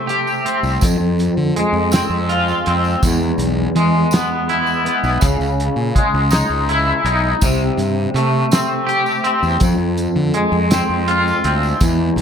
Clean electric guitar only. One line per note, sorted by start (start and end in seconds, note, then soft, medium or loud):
0.00 0.45 C3 medium
0.00 0.82 A3 medium
0.00 0.44 C4 medium
0.07 0.82 G4 medium
0.46 0.82 C4 medium
0.82 2.66 F2 medium
1.56 3.76 G#3 medium
1.92 2.66 C4 medium
2.29 3.03 F4 medium
2.67 3.03 C4 medium
3.04 4.87 E2 medium
3.76 5.23 G#3 medium
4.13 4.84 B3 medium
4.49 5.23 E4 medium
4.85 5.22 B3 medium
5.22 7.05 C#3 medium
5.95 7.42 G#3 medium
6.31 7.04 D#4 medium
6.69 7.42 E4 medium
7.06 7.42 D#4 medium
7.43 9.26 C3 medium
8.16 9.62 A3 medium
8.52 9.23 C4 medium
8.87 9.61 G4 medium
9.24 9.61 C4 medium
9.61 11.44 F2 medium
10.34 12.22 G#3 medium
10.71 11.44 C4 medium
11.08 11.81 F4 medium
11.45 11.81 C4 medium
11.81 12.22 E2 medium